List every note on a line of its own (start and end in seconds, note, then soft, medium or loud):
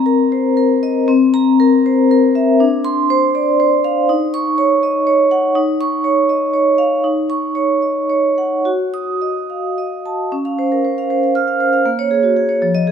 0.00 1.05 C4 medium
0.00 0.22 A#5 medium
0.06 0.47 A#4 medium
0.32 0.58 C5 soft
0.57 0.98 A#4 medium
0.83 1.09 D#5 medium
1.08 2.56 C4 medium
1.34 1.75 A#5 medium
1.60 2.01 A#4 medium
1.86 2.11 C5 medium
2.11 2.50 A#4 medium
2.35 2.60 E5 medium
2.60 4.04 D4 medium
2.85 3.24 C6 medium
3.10 3.49 C5 medium
3.35 3.59 D5 medium
3.60 3.99 C5 medium
3.84 4.09 F5 medium
4.09 5.52 D#4 medium
4.34 4.73 C#6 medium
4.58 4.97 C#5 medium
4.83 5.07 D#5 medium
5.07 5.46 C#5 medium
5.31 5.55 F#5 medium
5.55 7.00 D#4 medium
5.81 6.20 C#6 medium
6.04 6.44 C#5 medium
6.29 6.54 D#5 medium
6.53 6.94 C#5 medium
6.78 7.04 F5 medium
7.04 8.62 D#4 medium
7.30 7.72 C#6 medium
7.55 7.99 C#5 medium
7.82 8.10 D#5 soft
8.10 8.54 C#5 soft
8.38 8.66 F#5 soft
8.65 10.29 F#4 medium
8.94 9.39 D#6 medium
9.21 9.66 D#5 soft
9.50 9.78 F5 soft
9.78 10.22 D#5 soft
10.06 10.33 A5 soft
10.32 11.82 C#4 medium
10.45 10.66 F5 soft
10.59 10.80 C5 soft
10.72 10.85 A#4 soft
10.85 11.05 C5 soft
10.98 11.18 F5 soft
11.10 11.31 C5 soft
11.23 11.44 F5 soft
11.35 11.56 F6 medium
11.48 11.68 F5 soft
11.60 11.81 C5 soft
11.73 11.86 F5 soft
11.86 12.59 A#3 medium
11.99 12.19 C#5 medium
12.11 12.31 G#4 soft
12.23 12.36 F#4 soft
12.36 12.57 G#4 medium
12.49 12.62 C#5 soft
12.62 12.92 F3 medium
12.75 12.92 D#5 medium
12.87 12.92 G#4 medium